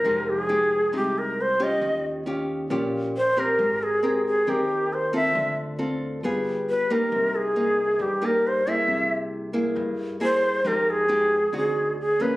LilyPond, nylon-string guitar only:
\new Staff \with { instrumentName = "Nylon-string guitar" } { \time 4/4 \key f \minor \tempo 4 = 136 << { <aes ees' g'>4 <aes ees' g'>8 r8 <aes ees' g'>4 r8 <des' f' g'>8~ | <des' f' g'>4 <des' f' g'>4 <des' f' g'>4 r8 <c' g' bes'>8~ | <c' g' bes'>4 <c' g' bes'>4 <c' g' bes'>4. <c' f' a'>8~ | <c' f' a'>4 <c' f' a'>4 <b f' aes'>4 r8 <bes ees' g'>8~ |
<bes ees' g'>4 <bes ees'>4. <bes ees' g'>4 <bes e' aes'>8~ | <bes e' aes'>4. <bes e' aes'>4. <bes e' aes'>4 | <aes ees' g'>4 <aes ees' g'>8 r8 <c' ees' fis'>4 r8 <f bes des'>8 | } \\ { f2 c2 | ees2 bes,2 | aes2 ees2 | d2 g2 |
c2 g,2 | c2 g,2 | f2 d2 | } >> }